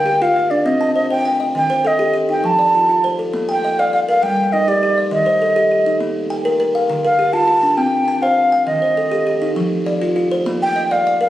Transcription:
Already playing: A#4 G5
0.06 G4
0.22 F4 F5
0.36 F4
0.50 D4 D5
0.65 C4 D#5
0.81 A5
0.95 C5 D#5
1.10 C5 G5
1.25 G5
1.40 D#5
1.55 D#3 G5
1.70 C5
1.85 A4 D#5
1.99 G4
2.14 G4
2.29 D#4 G5
2.44 F3 A5
2.59 D5
2.75 F4
2.89 F4
3.04 C5
3.19 A4
3.34 A#3
3.49 G5
3.64 D#5
3.79 D5 F5
3.93 D5 F5
4.08 A#4 F5
4.23 G3 G5
4.52 D#4 D#5
4.68 G4 D5
4.83 G4
4.98 D5
5.11 D#3 D#5
5.26 C5
5.42 A4
5.56 G4
5.72 G4
5.86 D#4
6.00 A#3
6.30 G5
6.45 A#4
6.60 A#4
6.75 F5
6.90 D3
7.05 A#4 F5
7.19 G4
7.33 F4 A5
7.48 F4
7.63 D4
7.77 C4 G5
8.08 A5
8.22 C5 F5
8.52 G5
8.67 D#3 D#5
8.82 C5
8.97 A4
9.12 G4
9.27 G4
9.42 D#4
9.56 F3
9.86 D5
10.02 F4
10.16 F4
10.31 C5
10.46 A#3
10.62 G5
10.76 D#5
10.91 D5 F5
11.07 D5
11.21 A#4 F5

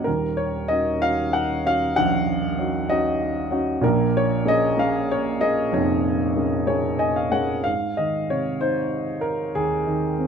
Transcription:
0.04 D#1 D#2 A#4
0.37 C#5
0.68 C#4 D#4 F#4 D#5
1.01 C#4 D#4 F#4 F5
1.33 F#5
1.65 C#4 D#4 F#4 F5
1.96 A#1 F#5
2.58 C#4 D#4 F#4
2.90 C#4 D#4 F#4 D#5
3.51 C#4 D#4 F#4
3.81 A#1 A#2 A#4
4.17 C#5
4.45 A#3 C#4 G#4 D#5
4.77 A#3 C#4 G#4 F5
5.11 C#5
5.40 A#3 C#4 G#4 D#5
5.72 F1 F2 C#5
6.36 A#3 C#4 G#4
6.66 A#3 C#4 G#4 C#5
6.99 D#5 G#5
7.16 F5
7.31 A#3 C#4 G#4 C#5 F#5
7.64 G#2 F5
7.97 D#3 D#5
8.30 C3 C#5
8.61 D#4 C5
9.21 A#4
9.55 D#2 G#4
9.87 D#3
10.19 C4

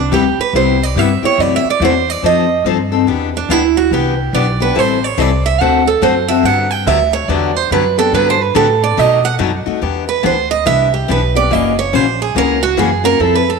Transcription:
Already playing: C2
0.00 D4
0.11 D2 C3 G3 B3 E4 G4
0.38 B4, muted upright bass stroke
0.53 C2 C3 G3 B3 E4 G4 C5
0.83 D5
0.96 G2 C3 G3 B3 E4 G4 E5
1.23 B3 E4 G4 C#5, muted upright bass stroke
1.38 F#2 C3 E3 A3 E4 F#4 D5
1.56 E5
1.65 muted upright bass stroke
1.70 D5
1.80 E2 C3 E3 A3 E4 F#4
1.85 C5
2.10 D5
2.22 F2 F3 C4 D#4 A4 D#5
2.64 G2 F3 C4 D#4 A4
2.92 C4 D#4 A4
3.07 E2 E3 B3 D4 G4
3.37 D4
3.49 D2 E3 B3 D4 E4 G4
3.77 F#4
3.91 C2 E3 B3 D4 G4
4.33 B1 E3 B3 D4 G4 D5
4.60 B3 D4 G4 B4
4.75 A1 E3 G3 C4 E4 A4 C5
5.04 C#5
5.18 C2 E3 G3 C4 E4 A4 D5
5.46 E5
5.60 D2 D3 A3 C4 F#4 A4 F#5
5.87 A4
6.02 F#2 D3 A3 C4 F#4 A4 C5
6.28 C4 F#4 A4 E5
6.43 G2 D3 F#3 B3 D4 G4 F#5
6.71 G5
6.86 D2 D3 F#3 B3 D4 G4 E5
7.13 C#5
7.28 E2 D3 F#3 B3 D4 G4 D5
7.56 C5
7.71 F#2 D3 F#3 B3 D4 G4 B4
7.98 B3 D4 G4 A4
8.12 G2 D3 F#3 B3 D4 G4 B4
8.30 C5
8.42 B4
8.55 A2 D3 F#3 B3 D4 G4 A4
8.84 D5
8.97 B2 F#3 A3 D#4 F#4 D#5
9.25 F#5
9.39 F#2 B2 F#3 A3 D#4 F#4
9.66 A3 D#4 F#4, muted upright bass stroke
9.81 E2 E3 B3 D4 G4
10.09 B4
10.23 D2 E3 B3 D4 G4 C5
10.51 D#5
10.66 C2 E3 B3 D4 G4 E5
10.94 G4
11.08 B1 E3 B3 D4 G4 B4
11.35 B3 D4 G4 D5
11.50 F#1 C#3 E3 A#3 C#4 F#4 D#5
11.79 C#5
11.93 A#1 C#3 E3 A#3 C#4 F#4 C5
12.22 G#4
12.35 C#2 C#3 E3 A#3 C#4 F#4 A#4
12.63 F#4
12.77 F#2 C#3 E3 A#3 C#4 F#4 G#4
13.04 A#3 C#4 F#4 A#4
13.19 F2 F3 C4 E4 A4
13.35 B4
13.50 A4

